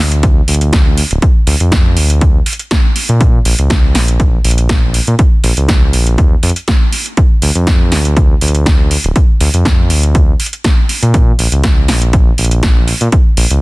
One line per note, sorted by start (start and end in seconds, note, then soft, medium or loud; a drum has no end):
0.00 0.41 D2 loud
0.12 closed hi-hat medium
0.23 kick loud
0.23 closed hi-hat medium
0.48 1.03 D2 medium
0.48 open hi-hat loud
0.55 closed hi-hat medium
0.61 closed hi-hat medium
0.73 kick loud
0.73 snare loud
0.73 closed hi-hat medium
0.97 open hi-hat loud
1.11 1.18 D1 loud
1.11 closed hi-hat medium
1.22 kick loud
1.22 closed hi-hat medium
1.47 1.56 D2 loud
1.47 open hi-hat loud
1.60 1.98 F2 medium
1.60 closed hi-hat medium
1.72 kick loud
1.72 snare loud
1.72 closed hi-hat medium
1.97 2.40 D2 medium
1.97 open hi-hat loud
2.10 closed hi-hat medium
2.21 kick loud
2.21 closed hi-hat medium
2.46 open hi-hat loud
2.53 closed hi-hat medium
2.59 closed hi-hat medium
2.71 kick loud
2.71 snare loud
2.71 closed hi-hat medium
2.96 open hi-hat loud
3.09 3.39 A#2 medium
3.09 closed hi-hat soft
3.21 kick loud
3.21 closed hi-hat medium
3.45 3.54 A#1 loud
3.45 open hi-hat loud
3.59 3.97 C#2 medium
3.59 closed hi-hat soft
3.70 kick loud
3.70 snare loud
3.70 closed hi-hat medium
3.95 4.38 A#1 loud
3.95 snare medium
3.95 open hi-hat loud
4.08 closed hi-hat medium
4.20 kick loud
4.20 closed hi-hat medium
4.45 5.00 A#1 medium
4.45 open hi-hat loud
4.51 closed hi-hat medium
4.58 closed hi-hat medium
4.69 kick loud
4.69 snare loud
4.69 closed hi-hat medium
4.94 open hi-hat loud
5.07 5.15 A#2 loud
5.07 closed hi-hat soft
5.19 kick loud
5.19 closed hi-hat medium
5.44 5.52 A#1 loud
5.44 open hi-hat loud
5.57 5.95 C#2 medium
5.57 closed hi-hat medium
5.69 kick loud
5.69 snare loud
5.69 closed hi-hat medium
5.93 6.18 A#1 loud
5.93 open hi-hat loud
6.07 closed hi-hat medium
6.18 6.35 D#2 medium
6.18 kick loud
6.18 closed hi-hat medium
6.43 6.51 F2 loud
6.43 open hi-hat loud
6.50 closed hi-hat medium
6.56 closed hi-hat medium
6.68 kick loud
6.68 snare loud
6.68 closed hi-hat medium
6.92 open hi-hat loud
7.06 closed hi-hat soft
7.17 kick loud
7.17 closed hi-hat medium
7.42 7.51 D2 loud
7.42 open hi-hat loud
7.55 7.93 F2 medium
7.55 closed hi-hat medium
7.67 kick loud
7.67 snare loud
7.67 closed hi-hat medium
7.92 8.35 D2 loud
7.92 snare medium
7.92 open hi-hat loud
8.05 closed hi-hat soft
8.17 kick loud
8.17 closed hi-hat medium
8.41 8.97 D2 medium
8.41 open hi-hat loud
8.48 closed hi-hat medium
8.55 closed hi-hat medium
8.66 kick loud
8.66 snare loud
8.66 closed hi-hat medium
8.91 open hi-hat loud
9.04 9.12 D1 loud
9.04 closed hi-hat soft
9.16 kick loud
9.16 closed hi-hat medium
9.40 9.49 D2 loud
9.40 open hi-hat loud
9.54 9.91 F2 medium
9.54 closed hi-hat medium
9.65 kick loud
9.65 snare loud
9.65 closed hi-hat medium
9.90 10.33 D2 medium
9.90 open hi-hat loud
10.03 closed hi-hat medium
10.15 kick loud
10.15 closed hi-hat medium
10.40 open hi-hat loud
10.46 closed hi-hat medium
10.53 closed hi-hat medium
10.64 kick loud
10.64 snare loud
10.64 closed hi-hat medium
10.89 open hi-hat loud
11.03 11.32 A#2 medium
11.03 closed hi-hat soft
11.14 kick loud
11.14 closed hi-hat medium
11.39 11.47 A#1 loud
11.39 open hi-hat loud
11.52 11.90 C#2 medium
11.52 closed hi-hat medium
11.64 kick loud
11.64 snare loud
11.64 closed hi-hat medium
11.88 12.31 A#1 loud
11.88 snare medium
11.88 open hi-hat loud
12.02 closed hi-hat medium
12.13 kick loud
12.13 closed hi-hat medium
12.38 12.93 A#1 medium
12.38 open hi-hat loud
12.45 closed hi-hat medium
12.51 closed hi-hat medium
12.63 kick loud
12.63 snare loud
12.63 closed hi-hat medium
12.88 open hi-hat loud
13.01 13.08 A#2 loud
13.01 closed hi-hat medium
13.12 kick loud
13.12 closed hi-hat medium
13.37 13.46 A#1 loud
13.37 open hi-hat loud
13.51 13.62 C#2 medium
13.51 closed hi-hat medium